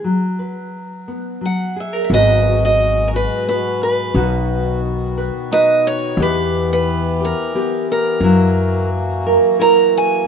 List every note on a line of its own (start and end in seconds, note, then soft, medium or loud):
0.04 1.40 F#3 soft
0.39 1.37 B4 soft
1.08 1.42 B3 soft
1.41 4.14 F#3 soft
1.46 1.79 F#5 medium
1.76 1.93 G#4 soft
1.76 2.03 E5 medium
1.93 2.10 A#4 soft
2.04 2.11 E5 soft
2.10 3.25 G#1 medium
2.10 4.14 G#2 medium
2.10 4.12 B2 medium
2.10 4.12 G#3 medium
2.10 3.48 B3 medium
2.10 6.14 F#4 medium
2.10 3.13 F#4 medium
2.10 5.17 B4 medium
2.14 2.64 D#5 medium
2.65 3.08 D#5 medium
3.08 3.14 A#4 medium
3.14 3.47 F#4 medium
3.14 3.47 B4 medium
3.48 4.15 B3 medium
3.48 4.11 F#4 medium
3.48 3.82 B4 medium
3.83 4.80 B4 medium
4.14 5.29 B1 medium
4.14 6.14 B2 medium
4.14 6.16 D#3 medium
4.14 8.19 B3 medium
4.14 5.50 D#4 medium
4.14 5.51 F#4 medium
5.18 5.51 B4 medium
5.51 6.14 D#4 medium
5.51 6.15 F#4 medium
5.51 6.15 B4 medium
5.51 5.86 D#5 loud
5.87 6.20 C#5 medium
6.17 7.32 E2 loud
6.17 10.23 E3 medium
6.17 8.18 E3 medium
6.17 7.54 B3 medium
6.17 8.20 G4 medium
6.17 7.19 G4 medium
6.22 6.72 B4 medium
6.73 7.23 B4 medium
7.20 7.54 G4 medium
7.25 7.86 A#4 medium
7.55 8.23 B3 medium
7.55 8.19 G4 medium
7.92 8.88 A#4 medium
8.21 9.36 F#2 medium
8.21 10.27 F#3 medium
8.21 10.27 A#3 medium
8.21 9.58 E4 medium
8.21 10.25 F#4 medium
9.27 9.59 A#4 medium
9.59 10.23 E4 soft
9.59 10.24 A#4 medium
9.59 9.95 A#5 medium
9.97 10.27 G#5 medium